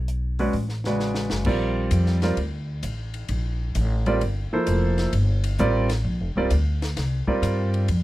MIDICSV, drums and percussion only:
0, 0, Header, 1, 2, 480
1, 0, Start_track
1, 0, Tempo, 459067
1, 1523, Time_signature, 4, 2, 24, 8
1, 8398, End_track
2, 0, Start_track
2, 0, Title_t, "Drums"
2, 85, Note_on_c, 9, 42, 42
2, 190, Note_off_c, 9, 42, 0
2, 408, Note_on_c, 9, 46, 30
2, 513, Note_off_c, 9, 46, 0
2, 558, Note_on_c, 9, 46, 38
2, 662, Note_off_c, 9, 46, 0
2, 719, Note_on_c, 9, 38, 23
2, 823, Note_off_c, 9, 38, 0
2, 880, Note_on_c, 9, 38, 35
2, 985, Note_off_c, 9, 38, 0
2, 1040, Note_on_c, 9, 38, 38
2, 1144, Note_off_c, 9, 38, 0
2, 1197, Note_on_c, 9, 38, 47
2, 1302, Note_off_c, 9, 38, 0
2, 1357, Note_on_c, 9, 38, 64
2, 1461, Note_off_c, 9, 38, 0
2, 1512, Note_on_c, 9, 49, 70
2, 1517, Note_on_c, 9, 36, 72
2, 1616, Note_off_c, 9, 49, 0
2, 1621, Note_off_c, 9, 36, 0
2, 1995, Note_on_c, 9, 44, 54
2, 1995, Note_on_c, 9, 51, 63
2, 2099, Note_off_c, 9, 44, 0
2, 2099, Note_off_c, 9, 51, 0
2, 2155, Note_on_c, 9, 38, 25
2, 2259, Note_off_c, 9, 38, 0
2, 2318, Note_on_c, 9, 38, 38
2, 2320, Note_on_c, 9, 51, 43
2, 2423, Note_off_c, 9, 38, 0
2, 2425, Note_off_c, 9, 51, 0
2, 2478, Note_on_c, 9, 51, 53
2, 2583, Note_off_c, 9, 51, 0
2, 2957, Note_on_c, 9, 44, 60
2, 2957, Note_on_c, 9, 51, 62
2, 3062, Note_off_c, 9, 44, 0
2, 3062, Note_off_c, 9, 51, 0
2, 3280, Note_on_c, 9, 51, 46
2, 3385, Note_off_c, 9, 51, 0
2, 3435, Note_on_c, 9, 51, 62
2, 3540, Note_off_c, 9, 51, 0
2, 3920, Note_on_c, 9, 44, 49
2, 3920, Note_on_c, 9, 51, 63
2, 4024, Note_off_c, 9, 44, 0
2, 4024, Note_off_c, 9, 51, 0
2, 4246, Note_on_c, 9, 51, 40
2, 4351, Note_off_c, 9, 51, 0
2, 4405, Note_on_c, 9, 51, 56
2, 4509, Note_off_c, 9, 51, 0
2, 4879, Note_on_c, 9, 44, 59
2, 4879, Note_on_c, 9, 51, 67
2, 4983, Note_off_c, 9, 44, 0
2, 4983, Note_off_c, 9, 51, 0
2, 5205, Note_on_c, 9, 51, 42
2, 5206, Note_on_c, 9, 38, 41
2, 5309, Note_off_c, 9, 51, 0
2, 5310, Note_off_c, 9, 38, 0
2, 5362, Note_on_c, 9, 51, 68
2, 5466, Note_off_c, 9, 51, 0
2, 5685, Note_on_c, 9, 51, 63
2, 5789, Note_off_c, 9, 51, 0
2, 5840, Note_on_c, 9, 44, 57
2, 5944, Note_off_c, 9, 44, 0
2, 6164, Note_on_c, 9, 51, 60
2, 6165, Note_on_c, 9, 38, 42
2, 6268, Note_off_c, 9, 51, 0
2, 6269, Note_off_c, 9, 38, 0
2, 6800, Note_on_c, 9, 44, 61
2, 6800, Note_on_c, 9, 51, 66
2, 6905, Note_off_c, 9, 44, 0
2, 6905, Note_off_c, 9, 51, 0
2, 7133, Note_on_c, 9, 51, 41
2, 7134, Note_on_c, 9, 38, 51
2, 7238, Note_off_c, 9, 51, 0
2, 7239, Note_off_c, 9, 38, 0
2, 7285, Note_on_c, 9, 51, 63
2, 7286, Note_on_c, 9, 38, 41
2, 7390, Note_off_c, 9, 51, 0
2, 7391, Note_off_c, 9, 38, 0
2, 7609, Note_on_c, 9, 36, 52
2, 7713, Note_off_c, 9, 36, 0
2, 7767, Note_on_c, 9, 44, 55
2, 7767, Note_on_c, 9, 51, 57
2, 7871, Note_off_c, 9, 44, 0
2, 7871, Note_off_c, 9, 51, 0
2, 8091, Note_on_c, 9, 51, 40
2, 8196, Note_off_c, 9, 51, 0
2, 8243, Note_on_c, 9, 51, 60
2, 8347, Note_off_c, 9, 51, 0
2, 8398, End_track
0, 0, End_of_file